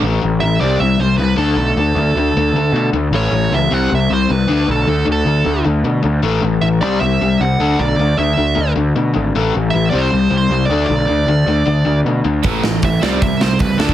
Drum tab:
HH |----------------|----------------|----------------|----------------|
SD |----------------|----------------|----------------|----------------|
BD |----------------|----------------|----------------|----------------|

HH |----------------|----------------|----------------|----------------|
SD |----------------|----------------|----------------|----------------|
BD |----------------|----------------|----------------|----------------|

HH |o---o---o---o---|
SD |--o---o---o---o-|
BD |o---o---o---o--o|